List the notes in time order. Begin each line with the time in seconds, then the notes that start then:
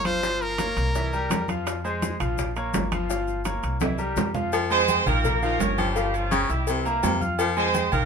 Already playing: G1
0.05 F3 F4 C5 F5, high conga, high timbale, maracas
0.23 F3 F4 F5, high bongo, high conga, maracas
0.41 A#4, high bongo, high conga, maracas
0.58 A#3 A#4 C#5, high bongo, high conga, high timbale, low timbale, maracas
0.77 C2, high timbale, maracas
0.95 E3 E4 E5, high bongo, high conga, maracas
1.12 G3 G4 A#4, high bongo, high conga, maracas
1.30 F2, high bongo, low bongo, high conga, high timbale, low timbale, maracas
1.48 F3 F4 F5, high bongo, high conga, high timbale, maracas
1.66 high bongo, high conga, high timbale, maracas
1.84 G#3 G#4 C5, high conga, maracas
2.02 high bongo, high conga, high timbale, low timbale, maracas
2.20 A#1 F3 F4 F5, high conga, low conga, high timbale, maracas
2.38 high bongo, high conga, low conga, maracas
2.56 A#3 A#4 C#5, high conga, high timbale, maracas
2.73 G1, high bongo, low bongo, high conga, high timbale, low timbale, maracas
2.92 F3 F4 F5, high conga, high timbale, maracas
3.09 F3 F4 F5, high bongo, high conga, maracas
3.28 high bongo, high conga, maracas
3.45 A#3 A#4 C#5, high bongo, high conga, high timbale, low timbale, maracas
3.63 C2, high timbale, maracas
3.80 E3 E4 E5, high bongo, high conga, high timbale, maracas
3.98 G3 G4 A#4, high bongo, maracas
4.17 F2, high bongo, low bongo, low conga, low timbale, maracas
4.34 F3 F4 F5, high bongo, low conga, low timbale, maracas
4.53 F3, cowbell, high conga, low agogo, maracas
4.70 G#3 C4 G#4 C5 G#5, high conga, maracas
4.88 cowbell, high conga, low timbale, low agogo, maracas
5.06 A#1 D#3 A#3 F4 A#4 F5 F6, high conga, low conga, low agogo, maracas
5.24 A#3 A#4 A#5, cowbell, high conga, low conga, maracas
5.42 D#3 F3 A#3 F4 G4 A#4 F5, high conga, maracas
5.60 G1 C#4 C#5 C#6, cowbell, high conga, low timbale, low agogo, maracas
5.78 F3 G3 C#4 G4, cowbell, high conga, low agogo, maracas
5.96 F3 F4 F5, cowbell, maracas
6.14 F3 C#4 F4, high conga, low agogo, maracas
6.31 C#3 C#4 C#5 C#6, cowbell, high conga, low timbale, low agogo, maracas
6.49 C2 G3 D#4 E4 G4 E5 E6, cowbell, maracas
6.67 C3 E3 C4 E4, cowbell, high conga, low agogo, maracas
6.85 E3 A#3 C4 E4 A#4 A#5, high conga, maracas
7.03 F2 C3, cowbell, high conga, low timbale, low agogo, maracas
7.20 F4 F5 F6, high conga, maracas
7.39 F3, cowbell, high conga, low agogo, maracas
7.57 G#3 C4 G#4 C5 G#5, high conga, maracas
7.74 cowbell, high conga, low timbale, low agogo, maracas
7.92 A#1 D#3 A#3 F4 A#4 F5 F6, high conga, low conga, low agogo, maracas